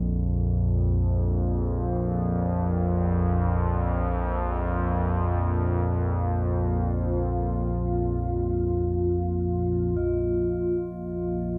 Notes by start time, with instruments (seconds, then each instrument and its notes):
Already playing: synth drone A#1 F2, singing bowl A#4
1.27 ambient pad A#3
2.58 ambient pad F4
5.01 ambient pad F5
9.97 singing bowl D#5
10.02 synth drone A#1 F2